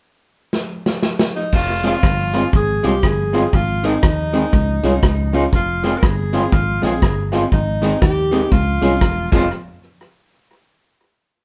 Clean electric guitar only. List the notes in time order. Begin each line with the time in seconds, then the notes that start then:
1.84 G#3 C4 F4
2.34 G#3 C4 F4
2.83 G#3 C4 F4
3.33 G#3 C4 F4
3.84 D#3 G#3 C4
4.33 D#3 G#3 C4
4.83 G#3 C#4 F4
5.33 G#3 C#4 F4
5.84 G#3 C4 F4
6.33 G#3 C4 F4
6.52 muted clean electric guitar stroke
6.82 G#3 C4 F4
7.32 G#3 C4 F4
7.82 D#3 G#3 C4
8.31 D#3 G#3 C4
8.81 G#3 C#4 F4
9.32 G#3 C4 F4